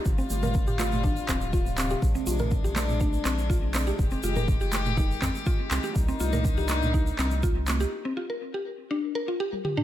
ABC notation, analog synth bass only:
X:1
M:4/4
L:1/8
Q:1/4=122
K:Gphr
V:1 name="Analog synth bass" clef=bass
G,,, G,,,4 D,,,3 | B,,, B,,,4 B,,,3 | F,,, F,,,4 F,, z C,, | C,, C,,4 C,,3 |
z8 |]